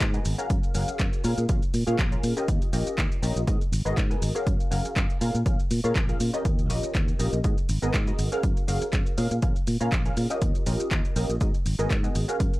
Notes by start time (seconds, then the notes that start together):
0.00 G#2, kick, clap, closed hi-hat, shaker
0.14 B3 F#4 G#4 A#4 D#5, closed hi-hat, shaker
0.25 G#1, open hi-hat, shaker
0.38 C#4 F#4 G#4 A#4 F5, closed hi-hat, shaker
0.50 F#2, kick, closed hi-hat, shaker
0.63 closed hi-hat, shaker
0.74 F#1 C#4 F#4 G#4 A#4 F5, open hi-hat, shaker
0.88 muted fingered electric bass stroke, closed hi-hat, shaker
0.99 F#2, kick, clap, closed hi-hat, shaker
1.13 closed hi-hat, shaker
1.24 A#2 C#4 F4 G#4 A#4 F5, open hi-hat, shaker
1.38 A#2, closed hi-hat, shaker
1.49 A#1 C#4 F4 G#4 A#4 F5, kick, closed hi-hat, shaker
1.62 closed hi-hat, shaker
1.74 A#2, open hi-hat, shaker
1.87 A#2 C#4 F4 G#4 A#4 F5, closed hi-hat, shaker
1.99 A#1, kick, clap, closed hi-hat, shaker
2.12 C#4 F4 G#4 A#4 F5, closed hi-hat, shaker
2.23 A#2, open hi-hat, shaker
2.37 C#4 F4 G4 A#4 D#5, closed hi-hat, shaker
2.48 D#2, kick, closed hi-hat, shaker
2.62 closed hi-hat, shaker
2.73 A#1 C#4 F4 G4 A#4 D#5, open hi-hat, shaker
2.87 closed hi-hat, shaker
2.98 D#2, kick, clap, closed hi-hat, shaker
3.12 closed hi-hat, shaker
3.22 A#1 C#4 F4 G4 A#4 D#5, open hi-hat, shaker
3.36 A#1, closed hi-hat, shaker
3.47 G#2 B3 F#4 G#4 A#4 D#5, kick, closed hi-hat, shaker
3.61 closed hi-hat, shaker
3.72 G#1, open hi-hat, shaker
3.85 G#1 B3 F#4 G#4 A#4 D#5, closed hi-hat, shaker
3.97 G#2, kick, clap, closed hi-hat, shaker
4.10 B3 F#4 G#4 A#4 D#5, closed hi-hat, shaker
4.22 G#1, open hi-hat, shaker
4.35 C#4 F#4 G#4 A#4 F5, closed hi-hat, shaker
4.47 F#2, kick, closed hi-hat, shaker
4.60 closed hi-hat, shaker
4.71 F#1 C#4 F#4 G#4 A#4 F5, open hi-hat, shaker
4.85 muted fingered electric bass stroke, closed hi-hat, shaker
4.96 F#2, kick, clap, closed hi-hat, shaker
5.10 closed hi-hat, shaker
5.21 A#2 C#4 F4 G#4 A#4 F5, open hi-hat, shaker
5.35 A#2, closed hi-hat, shaker
5.46 A#1 C#4 F4 G#4 A#4 F5, kick, closed hi-hat, shaker
5.60 closed hi-hat, shaker
5.71 A#2, open hi-hat, shaker
5.84 A#2 C#4 F4 G#4 A#4 F5, closed hi-hat, shaker
5.96 A#1, kick, clap, closed hi-hat, shaker
6.09 C#4 F4 G#4 A#4 F5, closed hi-hat, shaker
6.20 A#2, open hi-hat, shaker
6.33 C#4 F4 G4 A#4 D#5, closed hi-hat, shaker
6.45 D#2, kick, closed hi-hat, shaker
6.59 closed hi-hat, shaker
6.69 A#1 C#4 F4 G4 A#4 D#5, open hi-hat, shaker
6.83 muted fingered electric bass stroke, shaker
6.95 D#2, kick, clap, closed hi-hat, shaker
7.08 closed hi-hat, shaker
7.19 A#1 C#4 F4 G4 A#4 D#5, open hi-hat, shaker
7.33 A#1, closed hi-hat, shaker
7.44 G#2 B3 F#4 G#4 A#4 D#5, kick, closed hi-hat, shaker
7.58 closed hi-hat, shaker
7.69 G#1, open hi-hat, shaker
7.82 G#1 B3 F#4 G#4 A#4 D#5, closed hi-hat, shaker
7.94 G#2, kick, clap, closed hi-hat, shaker
8.07 B3 F#4 G#4 A#4 D#5, closed hi-hat, shaker
8.19 G#1, open hi-hat, shaker
8.32 C#4 F#4 G#4 A#4 F5, closed hi-hat, shaker
8.43 F#2, kick, closed hi-hat, shaker
8.57 closed hi-hat, shaker
8.68 F#1 C#4 F#4 G#4 A#4 F5, open hi-hat, shaker
8.82 muted fingered electric bass stroke, closed hi-hat, shaker
8.93 F#2, kick, clap, closed hi-hat, shaker
9.06 closed hi-hat, shaker
9.17 A#2 C#4 F4 G#4 A#4 F5, open hi-hat, shaker
9.31 A#2, closed hi-hat, shaker
9.42 A#1 C#4 F4 G#4 A#4 F5, kick, closed hi-hat, shaker
9.56 closed hi-hat, shaker
9.67 A#2, open hi-hat, shaker
9.80 A#2 C#4 F4 G#4 A#4 F5, closed hi-hat, shaker
9.92 A#1, kick, clap, closed hi-hat, shaker
10.05 C#4 F4 G#4 A#4 F5, closed hi-hat, shaker
10.17 A#2, open hi-hat, shaker
10.30 C#4 F4 G4 A#4 D#5, closed hi-hat, shaker
10.42 D#2, kick, closed hi-hat, shaker
10.55 closed hi-hat, shaker
10.66 A#1 C#4 F4 G4 A#4 D#5, open hi-hat, shaker
10.80 closed hi-hat, shaker
10.91 D#2, kick, clap, closed hi-hat, shaker
11.05 closed hi-hat, shaker
11.16 A#1 C#4 F4 G4 A#4 D#5, open hi-hat, shaker
11.29 A#1, closed hi-hat, shaker
11.41 G#2 B3 F#4 G#4 A#4 D#5, kick, closed hi-hat, shaker
11.54 closed hi-hat, shaker
11.66 G#1, open hi-hat, shaker
11.79 G#1 B3 F#4 G#4 A#4 D#5, closed hi-hat, shaker
11.90 G#2, kick, clap, closed hi-hat, shaker
12.03 B3 F#4 G#4 A#4 D#5, closed hi-hat, shaker
12.15 G#1, open hi-hat, shaker
12.28 C#4 F#4 G#4 A#4 F5, closed hi-hat, shaker
12.40 F#2, kick, closed hi-hat, shaker
12.53 closed hi-hat, shaker